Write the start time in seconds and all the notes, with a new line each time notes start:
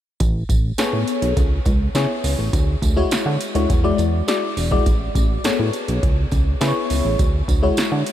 0.20 A1, kick, closed hi-hat, tambourine
0.49 A1, kick, closed hi-hat, tambourine
0.78 A2 B3 G#4 A4 C#5, snare, closed hi-hat, tambourine
0.93 A2
1.08 closed hi-hat, tambourine
1.22 B1, closed hi-hat
1.37 C#2, kick, closed hi-hat, tambourine
1.65 C#2, kick, closed hi-hat, tambourine
1.95 C#3 B3 E4 G#4 C#5, snare, closed hi-hat, tambourine
2.24 C#2, open hi-hat, tambourine
2.39 A1
2.53 D2, kick, closed hi-hat, tambourine
2.82 D2, kick, closed hi-hat, tambourine
2.96 G#3 E4 F#4 C#5
3.11 D3, snare, closed hi-hat, tambourine
3.26 D3
3.41 closed hi-hat, tambourine
3.55 D2 G#3 E4 F#4 C#5, closed hi-hat
3.70 E2, kick, closed hi-hat, tambourine
3.84 G#3 E4 F#4 D5
3.98 E2, closed hi-hat, tambourine
4.28 G#3 E4 F#4 D5, snare, closed hi-hat, tambourine
4.57 E1, open hi-hat, tambourine
4.71 G#3 E4 F#4 D5, kick
4.86 A1, kick, closed hi-hat, tambourine
5.15 A1, kick, closed hi-hat, tambourine
5.44 A2 B3 G#4 A4 C#5, snare, closed hi-hat, tambourine
5.59 A2
5.73 closed hi-hat, tambourine
5.88 B1, closed hi-hat
6.03 C#2, kick, closed hi-hat
6.31 C#2, kick, closed hi-hat, tambourine
6.61 C#3 B3 E4 G#4 B4, snare, closed hi-hat, tambourine
6.68 C#5
6.90 C#2, open hi-hat, tambourine
7.05 A1
7.19 D2, kick, closed hi-hat, tambourine
7.48 D2, kick, closed hi-hat, tambourine
7.63 G#3 E4 F#4 C#5
7.77 D3, snare, closed hi-hat, tambourine
7.92 D3
8.06 closed hi-hat